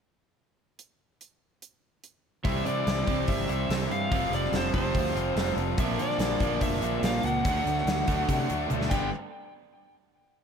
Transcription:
0.79 closed hi-hat
1.21 closed hi-hat
1.62 closed hi-hat
2.04 closed hi-hat
2.44 C2 C3 E3 G3 C4 E4 E5, kick, open hi-hat
2.65 C3 D5, open hi-hat
2.87 C2, snare, open hi-hat
3.07 C2 C3 G3 C4, kick, open hi-hat
3.28 G1 E5, kick, open hi-hat
3.48 C2 C3 E3 G3 C4 E4 E5, open hi-hat
3.69 C2 C3 E3 G3 C4 E4, snare, open hi-hat
3.91 G2 F5, open hi-hat
4.11 F1 F2 C3 F3 G3 C4 F4, kick, open hi-hat
4.30 F1, open hi-hat
4.34 D5
4.45 snare
4.52 F1, snare, open hi-hat
4.56 C5
4.74 F1 F2 C3 F3 C5, kick, open hi-hat
4.95 D2, kick, open hi-hat
5.06 snare
5.15 F1 F3 G3 C4 F4, open hi-hat
5.36 F1 F3 G3 C4 F4, snare, open hi-hat
5.49 B3 C4
5.54 F1 D4 E4, open hi-hat
5.59 F4 G4
5.66 A4 B4
5.71 C5 D5
5.77 A#1 A#2 D3 F3 A#3 C4 D4 A#4 D5 E5, kick, open hi-hat, shaker
5.98 A#2 D5, open hi-hat, shaker
6.11 snare
6.18 A#1, snare, open hi-hat, shaker
6.40 A#1 A#2 F3 A#3, kick, open hi-hat, shaker
6.61 F1 E5, kick, open hi-hat, shaker
6.73 snare
6.81 A#1 A#2 D3 F3 A#3 D4, open hi-hat, shaker
7.02 A#1 A#2 D3 F3 A#3 D4 F5, snare, open hi-hat, shaker
7.23 C#2 F#5, open hi-hat, shaker
7.44 D2 D3 F#3 A3 D4 F#4 E5, kick, open hi-hat, shaker
7.65 D2, open hi-hat, shaker
7.78 snare
7.85 D2, snare, open hi-hat, shaker
8.07 D2 D3 A3 D4, kick, open hi-hat, shaker
8.28 C3, kick, open hi-hat, shaker
8.49 D2 D3 F#3 A3 D4, open hi-hat, shaker
8.70 D2 D3 F#3 A3 D4, high tom, shaker
8.81 snare
8.90 G1 G2 D3 G3 B3 D4 G4 A4 F5 G5, kick, crash, shaker

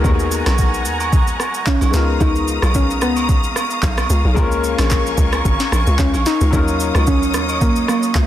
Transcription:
Already playing: G#3 B3 D#4 F#4 A#4 F#5 G#5 A#5, downlifter
0.04 D#2, kick, high agogo, shaker
0.19 shaker
0.31 shaker
0.46 B1, cross-stick, snare, high agogo, shaker
0.58 kick, shaker
0.74 shaker
0.85 D#2, shaker
1.00 high agogo, shaker
1.13 kick, shaker
1.27 shaker
1.40 cross-stick, high agogo, shaker
1.54 shaker
1.66 C#4, kick, clap, low woodblock, shaker
1.81 B1, high agogo, shaker
1.91 C#2 G#3 B3 D#4 F4 F5 A#5 D#6, snare, shaker
1.96 A#4
2.20 C#2 D#4, kick, high agogo, shaker
2.36 shaker
2.48 shaker
2.62 B1, cross-stick, high agogo, shaker
2.74 C#4, kick, shaker
2.90 shaker
3.01 C#2 B3, cross-stick, shaker
3.16 high agogo, shaker
3.29 kick, shaker
3.44 shaker
3.56 cross-stick, high agogo, shaker
3.70 shaker
3.83 B1, kick, clap, low woodblock, shaker
3.97 cross-stick, high agogo, shaker
4.10 C#2, shaker
4.25 B1
4.34 C#2 G#3 A#3 C4 F4 A#4 G#5 C#6, kick, high agogo, shaker
4.39 C#4 A#4
4.52 shaker
4.64 shaker
4.78 A#1, cross-stick, snare, high agogo, shaker
4.91 kick, clap, shaker
5.07 shaker
5.18 C#2, kick, shaker
5.33 cross-stick, high agogo, shaker
5.45 G#1, kick, shaker
5.60 snare, shaker
5.72 A#1, cross-stick, high agogo, shaker
5.87 C#2, shaker
5.99 C#2 C#4, kick, clap, low woodblock, shaker
6.14 A#1, high agogo, shaker
6.26 D#4, snare, shaker
6.41 C#2, shaker
6.51 D#2 F#3 C#4 D#4 F4 C#5 D#5 D#6, kick, high agogo, shaker
6.56 A#4
6.68 shaker
6.80 shaker
6.95 C#2, cross-stick, high agogo, shaker
7.07 C#4, kick, shaker
7.23 shaker
7.34 D#2, cross-stick, shaker
7.49 high agogo, shaker
7.61 A#3, kick, shaker
7.76 shaker
7.88 A#3, cross-stick, high agogo, shaker
8.03 shaker
8.15 C#2, kick, clap, low woodblock, shaker

